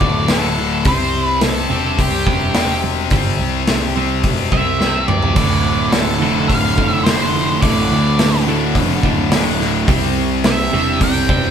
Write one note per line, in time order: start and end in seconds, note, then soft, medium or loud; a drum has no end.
0.00 0.82 D1 medium
0.00 0.29 D2 medium
0.00 0.28 D2 medium
0.00 0.28 A2 medium
0.00 0.28 D3 medium
0.00 0.33 D5 loud
0.00 kick medium
0.28 0.55 D2 medium
0.28 0.85 A2 medium
0.28 0.86 D3 medium
0.28 0.83 A4 medium
0.28 snare loud
0.28 open hi-hat medium
0.58 0.83 D2 medium
0.58 0.84 A2 medium
0.85 1.66 C2 medium
0.85 1.12 C3 medium
0.85 1.13 G3 medium
0.85 1.13 C4 medium
0.85 1.26 C5 medium
0.85 kick loud
0.85 open hi-hat medium
1.14 1.39 C3 medium
1.14 1.40 G3 medium
1.26 1.39 B4 medium
1.41 1.67 C3 medium
1.41 1.68 G3 medium
1.41 2.01 A4 medium
1.41 snare loud
1.41 open hi-hat medium
1.69 1.96 E1 medium
1.69 1.97 C3 medium
1.69 1.97 G3 medium
1.69 1.97 C4 medium
1.98 2.24 C2 medium
1.98 2.24 C3 medium
1.98 2.24 G3 medium
1.98 2.80 G4 medium
1.98 kick medium
1.98 open hi-hat medium
2.26 3.07 E1 medium
2.26 2.53 C3 medium
2.26 2.53 G3 medium
2.26 2.54 C4 loud
2.26 kick medium
2.54 2.80 C3 medium
2.54 3.10 G3 medium
2.54 3.11 C4 medium
2.54 snare loud
2.54 open hi-hat medium
2.84 3.09 C3 medium
2.84 3.09 G3 medium
3.10 3.37 G1 medium
3.10 3.38 C3 medium
3.10 3.39 G3 medium
3.10 3.39 C4 medium
3.10 kick loud
3.10 open hi-hat medium
3.39 4.25 C2 medium
3.39 3.65 C3 medium
3.39 3.65 G3 medium
3.67 3.93 C3 medium
3.67 3.94 G3 medium
3.67 snare loud
3.67 open hi-hat soft
3.97 4.23 C3 medium
3.97 4.23 G3 medium
3.97 4.23 C4 medium
4.23 4.50 E1 medium
4.23 4.50 C3 medium
4.23 4.50 G3 medium
4.23 kick medium
4.23 open hi-hat medium
4.52 5.33 C2 medium
4.52 4.79 C3 medium
4.52 4.79 G3 medium
4.52 4.79 C4 medium
4.52 5.05 E5 medium
4.52 kick medium
4.81 5.06 C3 medium
4.81 5.06 G3 medium
4.81 5.36 C4 medium
4.81 snare medium
5.08 5.34 C3 medium
5.08 5.34 G3 medium
5.08 5.96 D5 medium
5.08 mid tom medium
5.23 floor tom medium
5.36 6.17 D1 medium
5.36 5.63 D2 medium
5.36 5.64 A2 medium
5.36 5.64 D3 medium
5.36 kick loud
5.36 open hi-hat medium
5.36 crash medium
5.65 5.90 D2 medium
5.65 5.91 A2 medium
5.92 6.19 D2 medium
5.92 6.19 A2 medium
5.92 6.51 A4 medium
5.92 snare loud
5.92 open hi-hat medium
6.20 6.46 F1 medium
6.20 6.48 D2 medium
6.20 6.48 A2 medium
6.20 6.49 D3 medium
6.48 6.75 D1 medium
6.48 6.75 D2 medium
6.48 6.75 A2 medium
6.48 6.91 F5 medium
6.48 kick medium
6.48 open hi-hat medium
6.77 7.59 F1 medium
6.77 7.04 D2 medium
6.77 7.05 A2 medium
6.77 7.05 D3 medium
6.77 kick medium
6.91 7.07 E5 medium
7.04 7.32 D2 medium
7.04 7.32 A2 medium
7.04 7.62 D3 medium
7.04 7.63 C5 medium
7.04 snare loud
7.04 open hi-hat medium
7.35 7.60 D2 medium
7.35 7.60 A2 medium
7.62 7.88 A1 medium
7.62 7.89 D2 medium
7.62 7.90 A2 medium
7.62 7.90 D3 medium
7.62 8.43 D5 medium
7.62 kick loud
7.62 open hi-hat medium
7.90 8.76 D2 loud
7.90 8.16 D2 medium
7.90 8.17 A2 medium
8.19 8.45 D2 medium
8.19 8.45 A2 medium
8.19 snare loud
8.19 open hi-hat medium
8.48 8.74 D2 medium
8.48 8.74 A2 medium
8.48 8.75 D3 medium
8.75 9.01 F1 medium
8.75 9.01 D2 medium
8.75 9.01 A2 medium
8.75 kick medium
8.75 open hi-hat soft
9.03 9.84 D1 medium
9.03 9.31 D2 medium
9.03 9.31 A2 medium
9.03 9.31 D3 medium
9.03 kick medium
9.32 9.58 D2 medium
9.32 9.58 A2 medium
9.32 9.88 D3 medium
9.32 snare loud
9.32 open hi-hat medium
9.60 9.86 D2 medium
9.60 9.86 A2 medium
9.60 snare soft
9.88 10.69 C2 loud
9.88 10.15 C3 medium
9.88 10.15 G3 medium
9.88 10.15 C4 medium
9.88 kick loud
9.88 open hi-hat medium
10.17 10.42 C3 medium
10.17 10.42 G3 medium
10.44 10.70 C3 medium
10.44 10.71 G3 medium
10.44 10.98 E5 medium
10.44 snare loud
10.44 open hi-hat medium
10.73 10.98 E1 loud
10.73 11.00 C3 medium
10.73 11.00 G3 medium
10.73 11.00 C4 medium
11.00 11.26 C2 medium
11.00 11.27 C3 medium
11.00 11.27 G3 medium
11.00 11.51 G5 loud
11.00 kick medium
11.00 open hi-hat medium
11.29 11.51 E1 medium
11.29 11.51 C3 medium
11.29 11.51 G3 medium
11.29 11.51 C4 loud
11.29 kick medium